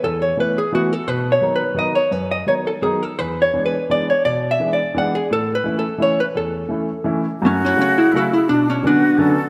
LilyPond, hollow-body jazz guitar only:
\new Staff \with { instrumentName = "Hollow-body jazz guitar" } { \time 3/4 \key a \major \tempo 4 = 171 a'8 cis''8 b'8 gis'8 fis'8 a'8 | \tuplet 3/2 { b'4 cis''8~ cis''8 b'4 } dis''8 cis''8 | b'8 dis''8 cis''8 a'8 gis'8 a'8 | \tuplet 3/2 { b'4 cis''8~ cis''8 b'4 } d''8 cis''8 |
\tuplet 3/2 { d''4 e''8~ e''8 d''4 } fis''8 gis'8 | \tuplet 3/2 { a'4 b'8~ b'8 a'4 } cis''8 b'8 | a'2~ a'8 r8 | \key fis \minor <a cis'>8 <cis' e'>8 <cis' fis'>8 <e' gis'>8 <fis' a'>8 <e' gis'>8 |
<d' fis'>8 <cis' e'>8 <b d'>4. r8 | }